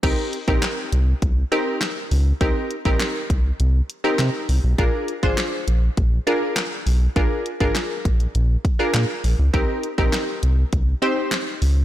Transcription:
<<
  \new Staff \with { instrumentName = "Synth stab" } { \time 4/4 \key c \minor \tempo 4 = 101 <c' ees' g' bes'>8 r16 <c' ees' g' bes'>4~ <c' ees' g' bes'>16 r8 <c' ees' g' bes'>4~ <c' ees' g' bes'>16 r16 | <c' ees' g' bes'>8 r16 <c' ees' g' bes'>4. r8 <c' ees' g' bes'>4 r16 | <d' f' aes' bes'>8 r16 <d' f' aes' c''>4~ <d' f' aes' c''>16 r8 <d' f' aes' bes'>4~ <d' f' aes' bes'>16 r16 | <d' f' aes' bes'>8 r16 <d' f' aes' bes'>4. r8 <d' f' aes' bes'>4 r16 |
<c' ees' g' bes'>8 r16 <c' ees' g' bes'>4~ <c' ees' g' bes'>16 r8 <c' ees' g' c''>4~ <c' ees' g' c''>16 r16 | }
  \new Staff \with { instrumentName = "Analog synth bass" } { \clef bass \time 4/4 \key c \minor c,16 r8 bes,,16 r8 c,8 c,8 r4 des,8 | c,16 r8 bes,,16 r8 c,8 c,8 r8 c16 r16 c,16 b,,16 | bes,,16 r8 aes,,16 r8 bes,,8 bes,,8 r4 b,,8 | bes,,16 r8 aes,,16 r8 bes,,8 bes,,8 r8 bes,16 r16 bes,,16 des,16 |
c,16 r8 bes,,16 r8 c,8 c,8 r4 des,8 | }
  \new DrumStaff \with { instrumentName = "Drums" } \drummode { \time 4/4 <cymc hh bd>8 hh16 <hh bd>16 <hc hh sn>8 hh8 <hh bd>8 hh8 <hc hh sn>8 hho8 | <hh bd>8 hh16 <hh bd>16 <hc hh sn>8 <hh bd>8 hh8 hh8 <hc hh sn>8 hho8 | <hh bd>8 hh16 <hh bd>16 <hc hh sn>8 hh8 <hh bd>8 hh8 <hc hh sn>8 hho8 | <hh bd>8 hh16 <hh bd>16 <hc hh sn>8 <hh bd>16 hh16 hh8 <hh bd>8 <hc hh sn>8 hho8 |
<hh bd>8 hh16 <hh bd>16 <hc hh sn>8 hh8 <hh bd>8 hh8 <hc hh sn>8 hho8 | }
>>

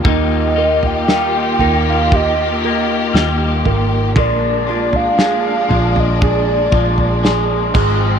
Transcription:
<<
  \new Staff \with { instrumentName = "Soft synth lead" } { \time 4/4 \key bes \mixolydian \tempo 4 = 59 ees''8. g''4 f''16 ees''4. r8 | d''8. f''4 ees''16 d''4. r8 | }
  \new Staff \with { instrumentName = "Grand piano" } { \time 4/4 \key bes \mixolydian ees8 bes8 bes'8 bes8 g'8 bes8 g'8 bes8 | bes8 f'8 aes'8 f'8 aes'8 f'8 aes'8 aes8 | }
  \new Staff \with { instrumentName = "String section" } { \time 4/4 \key bes \mixolydian << { <ees g'>1 | <aes d'>2.~ <aes d'>8 <f c'>8 | } \\ { <bes f'>1~ | <bes f'>2.~ <bes f'>8 r8 | } >> }
  \new Staff \with { instrumentName = "Clean electric guitar" } { \time 4/4 \key bes \mixolydian <ees g bes ees' f'>8 <bes ees' f'>8 <g bes ees' f'>8 <bes ees' f'>4 <bes ees' f'>8 <g bes ees' f'>4 | <bes, d f aes d' f'>8 <f aes d' f'>8 <f aes d' f'>8 <f aes d' f'>4 <f aes d' f'>8 <f aes d' f'>8 <aes, ees f aes c' f'>8 | }
  \new Staff \with { instrumentName = "Fingered electric bass" } { \clef bass \time 4/4 \key bes \mixolydian ees,4. ees,4. ees,8 aes,,8 | bes,,4. bes,,4 bes,,4 aes,,8 | }
  \new DrumStaff \with { instrumentName = "Drums" } \drummode { \time 4/4 <bd tomfh>8. tomfh16 sn8 tomfh8 <bd tomfh>4 sn8 tomfh8 | <bd tomfh>8. tomfh16 sn8 tomfh16 tomfh16 <bd tomfh>8 bd16 tomfh16 sn8 <cymc bd tomfh>8 | }
>>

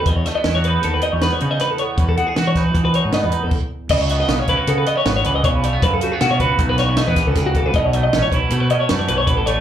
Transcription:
<<
  \new Staff \with { instrumentName = "Clean electric guitar" } { \time 5/4 \key cis \minor \tempo 4 = 156 dis''16 cis''16 dis''16 dis''8 cis''16 b'8 a'16 b'16 dis''16 cis''16 b'16 cis''16 b'16 dis''16 b'16 a'16 cis''8 | b'16 a'16 fis'16 gis'16 fis'16 cis''16 b'8 r16 b'16 cis''8 dis''16 b'8 a'16 r4 | dis''16 cis''16 dis''16 dis''8 cis''16 b'8 a'16 b'16 dis''16 cis''16 b'16 cis''16 b'16 dis''16 cis''16 b'16 cis''8 | b'16 a'16 fis'16 gis'16 fis'16 cis''16 b'8 r16 b'16 cis''8 dis''16 b'8 a'16 gis'16 fis'16 a'16 b'16 |
dis''16 cis''16 dis''16 dis''8 cis''16 b'8 a'16 b'16 dis''16 cis''16 b'16 cis''16 b'16 cis''16 b'16 a'16 cis''8 | }
  \new Staff \with { instrumentName = "Clean electric guitar" } { \time 5/4 \key cis \minor << { r8 a16 b16 e'16 fis'16 dis'4 dis'8 b8 dis'4 b8 | r8 b8 fis'8 dis'4 dis'8 b8 dis'8 r4 | r8 b8 b16 cis'16 e'16 fis'16 b8 b16 cis'16 b4. a16 b16 | r8 a16 b16 cis'8 fis'8 a16 b16 b16 cis'16 a16 b4.~ b16 |
r8 a8 cis'8 e'8 a8 cis'8 a4. a8 | } \\ { e,2 b,2 e,4 | e,2 b,2 r4 | cis2.~ cis8 e8 cis4 | cis2.~ cis8 e8 dis8 cis8 |
b,2.~ b,8 e8 b,4 | } >> }
  \new Staff \with { instrumentName = "Fingered electric bass" } { \clef bass \time 5/4 \key cis \minor e,8 r8 e,4 dis,8 r16 e,8 r16 cis8 r4 | e,8 r8 e4 e8. gis,16 gis,16 e,16 r16 e,16 r4 | cis,4 b,,16 r16 cis,16 r16 cis8 r8 gis,,8 cis,8 b,,4 | fis,8 r8 b,8 cis,8 b,,4~ b,,16 e,16 r16 cis,4 cis,16 |
b,,4 a,,16 r16 b,,16 r16 b,8 r8 fis,8 b,,8 a,,4 | }
  \new DrumStaff \with { instrumentName = "Drums" } \drummode { \time 5/4 <hh bd>8 <hh sn>8 <hh sn>8 hh8 hh8 hh8 <hh sn>8 hh8 <hh sn>8 hh8 | <hh bd>8 hh8 <hh sn>8 <hh bd sn>8 <hh bd>8 hh8 <hh sn>8 hh8 <cymc bd>4 | <cymc bd>8 hh8 <hh sn>8 <hh bd>8 hh8 hh8 <hh sn>8 hh8 <hh bd>8 hh8 | <hh bd>8 hh8 <hh sn>8 <hh bd>8 <hh bd>8 <hh sn>8 <hh sn>8 <hh bd sn>8 <hh bd sn>8 <hh bd>8 |
<hh bd>8 hh8 <hh sn>8 <hh bd>8 hh8 hh8 <hh sn>8 hh8 <hh bd>8 hh8 | }
>>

